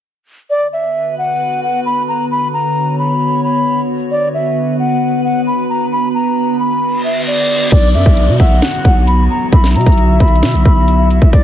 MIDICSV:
0, 0, Header, 1, 8, 480
1, 0, Start_track
1, 0, Key_signature, 2, "minor"
1, 0, Tempo, 451128
1, 535, Time_signature, 4, 2, 24, 8
1, 12169, End_track
2, 0, Start_track
2, 0, Title_t, "Flute"
2, 0, Program_c, 0, 73
2, 536, Note_on_c, 0, 74, 103
2, 719, Note_off_c, 0, 74, 0
2, 775, Note_on_c, 0, 76, 83
2, 1226, Note_off_c, 0, 76, 0
2, 1258, Note_on_c, 0, 78, 77
2, 1708, Note_off_c, 0, 78, 0
2, 1737, Note_on_c, 0, 78, 80
2, 1919, Note_off_c, 0, 78, 0
2, 1975, Note_on_c, 0, 83, 94
2, 2158, Note_off_c, 0, 83, 0
2, 2217, Note_on_c, 0, 82, 76
2, 2399, Note_off_c, 0, 82, 0
2, 2458, Note_on_c, 0, 83, 105
2, 2640, Note_off_c, 0, 83, 0
2, 2698, Note_on_c, 0, 82, 81
2, 3148, Note_off_c, 0, 82, 0
2, 3179, Note_on_c, 0, 83, 72
2, 3628, Note_off_c, 0, 83, 0
2, 3657, Note_on_c, 0, 83, 82
2, 4052, Note_off_c, 0, 83, 0
2, 4376, Note_on_c, 0, 74, 90
2, 4559, Note_off_c, 0, 74, 0
2, 4620, Note_on_c, 0, 76, 78
2, 5069, Note_off_c, 0, 76, 0
2, 5097, Note_on_c, 0, 78, 79
2, 5547, Note_off_c, 0, 78, 0
2, 5577, Note_on_c, 0, 78, 81
2, 5760, Note_off_c, 0, 78, 0
2, 5819, Note_on_c, 0, 83, 80
2, 6000, Note_off_c, 0, 83, 0
2, 6058, Note_on_c, 0, 82, 75
2, 6240, Note_off_c, 0, 82, 0
2, 6298, Note_on_c, 0, 83, 106
2, 6480, Note_off_c, 0, 83, 0
2, 6538, Note_on_c, 0, 82, 74
2, 6988, Note_off_c, 0, 82, 0
2, 7016, Note_on_c, 0, 83, 72
2, 7467, Note_off_c, 0, 83, 0
2, 7495, Note_on_c, 0, 76, 81
2, 7678, Note_off_c, 0, 76, 0
2, 7734, Note_on_c, 0, 74, 81
2, 8186, Note_off_c, 0, 74, 0
2, 8214, Note_on_c, 0, 74, 112
2, 8398, Note_off_c, 0, 74, 0
2, 8452, Note_on_c, 0, 76, 91
2, 8905, Note_off_c, 0, 76, 0
2, 8935, Note_on_c, 0, 78, 82
2, 9386, Note_off_c, 0, 78, 0
2, 9412, Note_on_c, 0, 78, 84
2, 9596, Note_off_c, 0, 78, 0
2, 9652, Note_on_c, 0, 83, 94
2, 9836, Note_off_c, 0, 83, 0
2, 9896, Note_on_c, 0, 82, 79
2, 10079, Note_off_c, 0, 82, 0
2, 10134, Note_on_c, 0, 83, 108
2, 10318, Note_off_c, 0, 83, 0
2, 10375, Note_on_c, 0, 82, 84
2, 10827, Note_off_c, 0, 82, 0
2, 10856, Note_on_c, 0, 83, 77
2, 11307, Note_off_c, 0, 83, 0
2, 11336, Note_on_c, 0, 83, 81
2, 11799, Note_off_c, 0, 83, 0
2, 12055, Note_on_c, 0, 74, 101
2, 12169, Note_off_c, 0, 74, 0
2, 12169, End_track
3, 0, Start_track
3, 0, Title_t, "Soft synth lead"
3, 0, Program_c, 1, 80
3, 8215, Note_on_c, 1, 74, 115
3, 8892, Note_off_c, 1, 74, 0
3, 8934, Note_on_c, 1, 76, 85
3, 9163, Note_off_c, 1, 76, 0
3, 9175, Note_on_c, 1, 78, 91
3, 9626, Note_off_c, 1, 78, 0
3, 10134, Note_on_c, 1, 76, 127
3, 12012, Note_off_c, 1, 76, 0
3, 12057, Note_on_c, 1, 74, 126
3, 12169, Note_off_c, 1, 74, 0
3, 12169, End_track
4, 0, Start_track
4, 0, Title_t, "Ambient pad"
4, 0, Program_c, 2, 92
4, 534, Note_on_c, 2, 71, 96
4, 535, Note_on_c, 2, 50, 86
4, 535, Note_on_c, 2, 59, 77
4, 535, Note_on_c, 2, 66, 77
4, 2436, Note_off_c, 2, 71, 0
4, 2456, Note_on_c, 2, 73, 91
4, 4356, Note_off_c, 2, 73, 0
4, 4376, Note_on_c, 2, 71, 94
4, 8173, Note_off_c, 2, 50, 0
4, 8173, Note_off_c, 2, 59, 0
4, 8173, Note_off_c, 2, 66, 0
4, 8177, Note_off_c, 2, 71, 0
4, 8216, Note_on_c, 2, 59, 79
4, 8217, Note_on_c, 2, 50, 85
4, 8217, Note_on_c, 2, 54, 80
4, 8217, Note_on_c, 2, 66, 96
4, 12018, Note_off_c, 2, 66, 0
4, 12056, Note_on_c, 2, 66, 97
4, 12169, Note_off_c, 2, 50, 0
4, 12169, Note_off_c, 2, 54, 0
4, 12169, Note_off_c, 2, 59, 0
4, 12169, Note_off_c, 2, 66, 0
4, 12169, End_track
5, 0, Start_track
5, 0, Title_t, "808-style bass"
5, 0, Program_c, 3, 38
5, 8215, Note_on_c, 3, 35, 106
5, 8455, Note_on_c, 3, 42, 98
5, 8471, Note_off_c, 3, 35, 0
5, 8569, Note_off_c, 3, 42, 0
5, 8576, Note_on_c, 3, 35, 107
5, 8815, Note_on_c, 3, 47, 100
5, 8831, Note_off_c, 3, 35, 0
5, 8929, Note_off_c, 3, 47, 0
5, 8935, Note_on_c, 3, 35, 105
5, 9166, Note_off_c, 3, 35, 0
5, 9415, Note_on_c, 3, 35, 105
5, 9876, Note_off_c, 3, 35, 0
5, 10135, Note_on_c, 3, 35, 106
5, 10376, Note_on_c, 3, 47, 98
5, 10392, Note_off_c, 3, 35, 0
5, 10490, Note_off_c, 3, 47, 0
5, 10496, Note_on_c, 3, 35, 104
5, 10841, Note_off_c, 3, 35, 0
5, 10856, Note_on_c, 3, 35, 110
5, 11096, Note_on_c, 3, 47, 99
5, 11112, Note_off_c, 3, 35, 0
5, 11217, Note_on_c, 3, 35, 102
5, 11233, Note_off_c, 3, 47, 0
5, 11330, Note_off_c, 3, 35, 0
5, 11337, Note_on_c, 3, 35, 99
5, 11912, Note_off_c, 3, 35, 0
5, 11936, Note_on_c, 3, 35, 105
5, 12051, Note_off_c, 3, 35, 0
5, 12056, Note_on_c, 3, 35, 115
5, 12169, Note_off_c, 3, 35, 0
5, 12169, End_track
6, 0, Start_track
6, 0, Title_t, "Downlifter"
6, 0, Program_c, 4, 103
6, 8215, Note_on_c, 4, 60, 92
6, 12055, Note_off_c, 4, 60, 0
6, 12169, End_track
7, 0, Start_track
7, 0, Title_t, "Reverse cymbal"
7, 0, Program_c, 5, 119
7, 7255, Note_on_c, 5, 60, 80
7, 8215, Note_off_c, 5, 60, 0
7, 12169, End_track
8, 0, Start_track
8, 0, Title_t, "Drums"
8, 8215, Note_on_c, 9, 36, 108
8, 8215, Note_on_c, 9, 42, 83
8, 8215, Note_on_c, 9, 49, 95
8, 8321, Note_off_c, 9, 36, 0
8, 8321, Note_off_c, 9, 42, 0
8, 8322, Note_off_c, 9, 49, 0
8, 8453, Note_on_c, 9, 42, 67
8, 8559, Note_off_c, 9, 42, 0
8, 8576, Note_on_c, 9, 36, 100
8, 8682, Note_off_c, 9, 36, 0
8, 8693, Note_on_c, 9, 42, 78
8, 8800, Note_off_c, 9, 42, 0
8, 8935, Note_on_c, 9, 36, 93
8, 8935, Note_on_c, 9, 42, 81
8, 9041, Note_off_c, 9, 42, 0
8, 9042, Note_off_c, 9, 36, 0
8, 9174, Note_on_c, 9, 42, 95
8, 9175, Note_on_c, 9, 38, 127
8, 9280, Note_off_c, 9, 42, 0
8, 9281, Note_off_c, 9, 38, 0
8, 9416, Note_on_c, 9, 36, 99
8, 9418, Note_on_c, 9, 42, 75
8, 9522, Note_off_c, 9, 36, 0
8, 9524, Note_off_c, 9, 42, 0
8, 9654, Note_on_c, 9, 42, 79
8, 9761, Note_off_c, 9, 42, 0
8, 10135, Note_on_c, 9, 36, 113
8, 10135, Note_on_c, 9, 42, 81
8, 10241, Note_off_c, 9, 42, 0
8, 10242, Note_off_c, 9, 36, 0
8, 10256, Note_on_c, 9, 38, 72
8, 10363, Note_off_c, 9, 38, 0
8, 10375, Note_on_c, 9, 42, 70
8, 10436, Note_off_c, 9, 42, 0
8, 10436, Note_on_c, 9, 42, 60
8, 10496, Note_off_c, 9, 42, 0
8, 10496, Note_on_c, 9, 36, 98
8, 10496, Note_on_c, 9, 42, 51
8, 10556, Note_off_c, 9, 42, 0
8, 10556, Note_on_c, 9, 42, 41
8, 10602, Note_off_c, 9, 36, 0
8, 10613, Note_off_c, 9, 42, 0
8, 10613, Note_on_c, 9, 42, 76
8, 10720, Note_off_c, 9, 42, 0
8, 10856, Note_on_c, 9, 36, 94
8, 10856, Note_on_c, 9, 42, 77
8, 10936, Note_off_c, 9, 42, 0
8, 10936, Note_on_c, 9, 42, 61
8, 10962, Note_off_c, 9, 36, 0
8, 11016, Note_off_c, 9, 42, 0
8, 11016, Note_on_c, 9, 42, 46
8, 11095, Note_off_c, 9, 42, 0
8, 11095, Note_on_c, 9, 42, 92
8, 11096, Note_on_c, 9, 38, 127
8, 11201, Note_off_c, 9, 42, 0
8, 11202, Note_off_c, 9, 38, 0
8, 11337, Note_on_c, 9, 36, 98
8, 11443, Note_off_c, 9, 36, 0
8, 11575, Note_on_c, 9, 42, 77
8, 11682, Note_off_c, 9, 42, 0
8, 11816, Note_on_c, 9, 42, 81
8, 11922, Note_off_c, 9, 42, 0
8, 11936, Note_on_c, 9, 36, 97
8, 12042, Note_off_c, 9, 36, 0
8, 12055, Note_on_c, 9, 42, 81
8, 12056, Note_on_c, 9, 36, 113
8, 12162, Note_off_c, 9, 36, 0
8, 12162, Note_off_c, 9, 42, 0
8, 12169, End_track
0, 0, End_of_file